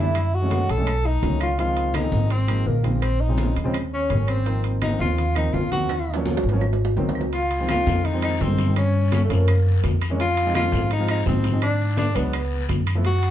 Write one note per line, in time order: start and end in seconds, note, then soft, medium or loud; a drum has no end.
0.00 0.63 F#2 medium
0.00 0.15 E3 medium
0.00 0.15 G3 medium
0.00 0.16 A3 medium
0.00 0.16 D4 medium
0.00 0.36 E4 loud
0.00 0.36 E5 medium
0.15 high timbale medium
0.15 claves medium
0.32 0.72 F#4 loud
0.32 0.71 F#5 medium
0.32 high conga soft
0.42 0.67 E3 medium
0.42 0.67 G#3 medium
0.42 0.67 A3 medium
0.42 0.68 C#4 medium
0.51 high conga medium
0.51 high timbale medium
0.69 1.19 B1 medium
0.69 1.08 A4 loud
0.69 1.07 A5 medium
0.69 high conga soft
0.69 high timbale medium
0.77 0.86 E3 medium
0.77 0.87 G#3 medium
0.77 0.87 A3 medium
0.77 0.87 C#4 medium
0.87 high conga soft
0.87 high timbale medium
0.87 claves medium
1.05 1.42 D#4 loud
1.05 1.40 D#5 medium
1.05 high conga soft
1.22 2.07 C#2 medium
1.22 1.48 D#3 medium
1.22 1.48 F#3 medium
1.22 1.48 A3 medium
1.22 1.48 C#4 medium
1.22 high conga medium
1.22 high timbale medium
1.22 low timbale medium
1.41 1.58 F4 medium
1.41 1.57 F5 medium
1.41 high timbale medium
1.41 claves medium
1.58 1.90 D#3 medium
1.58 1.90 F3 medium
1.58 1.90 G#3 medium
1.58 1.90 C4 medium
1.58 1.96 F4 medium
1.58 1.97 F5 medium
1.58 high conga soft
1.58 high timbale medium
1.76 high conga soft
1.76 high timbale medium
1.94 2.33 D#4 medium
1.94 2.33 D#5 medium
1.94 high conga loud
1.94 high timbale medium
1.94 claves medium
2.02 2.34 D#3 medium
2.02 2.35 F3 medium
2.02 2.35 G#3 medium
2.02 2.35 C4 medium
2.12 2.62 G#1 medium
2.12 high conga medium
2.30 2.69 C4 medium
2.30 2.68 C5 medium
2.30 high conga soft
2.30 high timbale medium
2.47 2.73 D#3 medium
2.47 2.73 F3 medium
2.47 2.73 G#3 medium
2.47 2.74 A#3 medium
2.47 high conga soft
2.47 high timbale medium
2.47 claves medium
2.66 3.50 A#1 medium
2.66 3.04 A#3 medium
2.66 3.03 A#4 medium
2.66 high conga medium
2.83 3.02 D#3 medium
2.83 3.02 F3 medium
2.83 3.02 G#3 medium
2.83 3.02 C4 medium
2.83 high conga medium
2.83 high timbale medium
3.02 3.22 C4 medium
3.02 3.21 C5 medium
3.02 high conga soft
3.02 high timbale medium
3.02 claves medium
3.20 3.56 D#4 medium
3.20 3.56 D#5 medium
3.20 high conga soft
3.28 3.54 C#3 medium
3.28 3.54 F3 medium
3.28 3.54 G#3 medium
3.28 3.54 C4 medium
3.38 high conga loud
3.38 high timbale medium
3.56 4.06 D#2 medium
3.56 high conga soft
3.56 high timbale medium
3.64 3.73 C#3 medium
3.64 3.74 F3 medium
3.64 3.74 G#3 medium
3.64 3.74 C4 loud
3.74 high conga soft
3.74 high timbale medium
3.74 claves medium
3.92 4.31 C#4 medium
3.92 4.31 C#5 medium
3.92 high conga soft
4.09 4.94 G#1 medium
4.09 4.35 E3 medium
4.09 4.35 G3 medium
4.09 4.35 A#3 medium
4.09 4.35 C#4 medium
4.09 high conga medium
4.09 high timbale medium
4.28 4.65 C4 medium
4.28 4.65 C5 medium
4.28 high conga soft
4.28 high timbale medium
4.28 claves medium
4.45 4.77 D#3 medium
4.45 4.77 F3 medium
4.45 4.77 A#3 medium
4.45 4.78 C4 medium
4.45 high conga soft
4.45 high timbale medium
4.64 high timbale medium
4.82 4.99 D#4 loud
4.82 4.99 D#5 medium
4.82 high conga medium
4.82 high timbale medium
4.82 claves medium
4.90 5.22 D#3 medium
4.90 5.22 F3 medium
4.90 5.22 A#3 medium
4.90 5.23 C4 medium
4.99 5.50 D#2 medium
4.99 5.34 F4 medium
4.99 5.33 F5 medium
4.99 high conga medium
5.18 high conga soft
5.18 high timbale medium
5.35 5.61 D#3 medium
5.35 5.61 F3 medium
5.35 5.61 A#3 medium
5.35 5.61 C4 medium
5.35 5.55 D#4 medium
5.35 5.55 D#5 medium
5.35 high conga soft
5.35 high timbale medium
5.35 claves medium
5.54 6.38 D#2 medium
5.54 5.72 F4 medium
5.54 5.70 F5 medium
5.54 high conga medium
5.54 low timbale medium
5.71 5.89 D#3 medium
5.71 5.89 F3 medium
5.71 5.90 A#3 medium
5.71 5.90 C4 medium
5.71 6.22 F#4 medium
5.71 6.21 F#5 medium
5.71 high conga medium
5.71 high timbale medium
5.89 high conga soft
5.89 high timbale medium
5.89 claves medium
6.07 high conga soft
6.14 6.41 F3 medium
6.14 6.41 F#3 medium
6.14 6.42 A#3 medium
6.14 6.42 C#4 medium
6.14 high timbale medium
6.25 high conga loud
6.25 low timbale medium
6.37 low timbale loud
6.43 6.93 G#1 medium
6.43 high conga soft
6.49 6.61 F3 medium
6.49 6.61 F#3 medium
6.49 6.61 A#3 medium
6.49 low timbale medium
6.53 6.62 C#4 loud
6.61 high conga soft
6.61 low timbale medium
6.61 claves medium
6.73 low timbale medium
6.79 high conga soft
6.85 low timbale medium
6.97 7.81 C#2 medium
6.97 7.22 D#3 medium
6.97 7.22 F#3 medium
6.97 7.22 A#3 medium
6.97 7.23 C4 medium
6.97 high conga medium
6.97 low timbale medium
7.09 low timbale medium
7.15 high conga soft
7.15 claves medium
7.21 low timbale medium
7.33 7.67 F4 medium
7.33 7.67 F5 medium
7.33 high conga soft
7.33 high timbale medium
7.33 long guiro medium
7.51 high conga soft
7.51 high timbale medium
7.59 7.72 D#3 medium
7.59 7.72 F3 medium
7.59 7.73 G#3 medium
7.59 7.73 C4 medium
7.69 8.07 F4 loud
7.69 8.07 F5 medium
7.69 high conga loud
7.69 high timbale medium
7.69 short guiro medium
7.69 claves medium
7.77 8.03 D#3 medium
7.77 8.03 F3 medium
7.77 8.03 G#3 medium
7.77 8.03 C4 medium
7.86 8.36 F2 medium
7.86 high conga loud
7.86 short guiro medium
8.05 8.23 D#4 medium
8.05 8.23 D#5 medium
8.05 high conga soft
8.05 high timbale medium
8.05 long guiro medium
8.13 8.32 D#3 medium
8.13 8.32 F3 medium
8.13 8.33 G#3 medium
8.13 8.33 C4 medium
8.22 8.43 D#4 loud
8.22 8.43 D#5 medium
8.22 high conga soft
8.22 high timbale medium
8.22 claves medium
8.40 9.24 G2 loud
8.40 8.59 D#3 medium
8.40 8.59 F3 medium
8.40 8.59 G#3 medium
8.40 8.60 C4 medium
8.40 8.77 C4 medium
8.40 8.76 C5 medium
8.40 high conga medium
8.40 low timbale medium
8.40 short guiro medium
8.58 high conga medium
8.58 high timbale medium
8.58 short guiro medium
8.67 8.76 D#3 medium
8.67 8.76 F3 medium
8.67 8.76 G#3 medium
8.67 8.77 C4 medium
8.76 9.10 C#4 medium
8.76 9.10 C#5 medium
8.76 high conga soft
8.76 high timbale medium
8.76 long guiro medium
8.76 claves medium
8.95 high conga soft
9.12 9.23 C#4 medium
9.12 9.22 C#5 medium
9.12 high conga loud
9.12 high timbale medium
9.12 short guiro medium
9.23 9.34 A3 medium
9.23 9.33 A4 soft
9.29 9.80 F#2 loud
9.29 9.47 F3 medium
9.29 9.48 A3 medium
9.29 9.48 A#3 medium
9.29 9.85 A#3 medium
9.29 9.48 C#4 medium
9.29 9.84 A#4 medium
9.29 high conga soft
9.29 high timbale medium
9.29 short guiro medium
9.48 high conga soft
9.48 high timbale medium
9.48 long guiro medium
9.48 claves medium
9.66 high conga soft
9.83 10.67 F2 loud
9.83 high conga medium
9.83 high timbale medium
9.83 low timbale medium
9.83 short guiro medium
10.01 high conga soft
10.01 high timbale medium
10.01 short guiro medium
10.01 claves medium
10.10 10.19 E3 medium
10.10 10.19 G#3 medium
10.10 10.20 A#3 medium
10.10 10.20 C#4 medium
10.19 10.53 F4 loud
10.19 10.53 F5 loud
10.19 high conga soft
10.19 high timbale medium
10.19 long guiro medium
10.37 high conga soft
10.37 high timbale medium
10.46 10.58 F3 medium
10.46 10.58 G#3 medium
10.46 10.59 C4 medium
10.46 10.59 D#4 medium
10.55 10.89 F4 loud
10.55 10.89 F5 medium
10.55 high conga loud
10.55 high timbale medium
10.55 short guiro medium
10.55 claves medium
10.64 10.89 F3 medium
10.64 10.89 G#3 medium
10.64 10.89 C4 medium
10.64 10.89 F4 medium
10.72 11.23 G#2 loud
10.72 high conga loud
10.72 short guiro medium
10.90 11.08 D#4 loud
10.90 11.08 D#5 medium
10.90 high conga soft
10.90 high timbale medium
10.90 long guiro medium
10.99 11.18 F3 medium
10.99 11.18 G#3 medium
10.99 11.19 C4 medium
10.99 11.19 F4 medium
11.08 11.26 D#4 medium
11.08 11.25 D#5 medium
11.08 high conga soft
11.08 high timbale medium
11.08 claves medium
11.26 12.10 G#2 loud
11.26 11.45 F3 medium
11.26 11.45 G#3 medium
11.26 11.45 C4 medium
11.26 11.60 C4 medium
11.26 11.46 D#4 medium
11.26 11.60 C5 medium
11.26 high conga medium
11.26 low timbale medium
11.26 short guiro medium
11.44 high conga medium
11.44 high timbale medium
11.44 short guiro medium
11.52 11.62 F3 medium
11.52 11.62 G#3 medium
11.52 11.62 C4 medium
11.52 11.62 D#4 medium
11.62 11.96 D4 medium
11.62 11.96 D5 medium
11.62 high conga soft
11.62 high timbale medium
11.62 long guiro medium
11.62 claves medium
11.79 high conga soft
11.97 12.17 D4 loud
11.97 12.18 D5 medium
11.97 high conga loud
11.97 high timbale medium
11.97 short guiro medium
12.15 12.65 C#2 medium
12.15 12.33 F#3 medium
12.15 12.33 G#3 medium
12.15 12.69 B3 medium
12.15 12.34 B3 medium
12.15 12.34 D4 medium
12.15 12.70 B4 medium
12.15 high conga soft
12.15 high timbale medium
12.15 short guiro medium
12.33 high conga soft
12.33 high timbale medium
12.33 long guiro medium
12.33 claves medium
12.52 high conga soft
12.69 13.31 F#2 medium
12.69 high conga medium
12.69 high timbale medium
12.69 low timbale medium
12.69 short guiro medium
12.87 high conga soft
12.87 high timbale medium
12.87 short guiro medium
12.87 claves medium
12.95 13.05 F3 medium
12.95 13.05 A3 medium
12.95 13.05 B3 medium
12.95 13.05 E4 medium
13.05 13.31 F#4 loud
13.05 13.31 F#5 medium
13.05 high conga soft
13.05 high timbale medium
13.05 long guiro medium
13.23 high conga soft
13.23 high timbale medium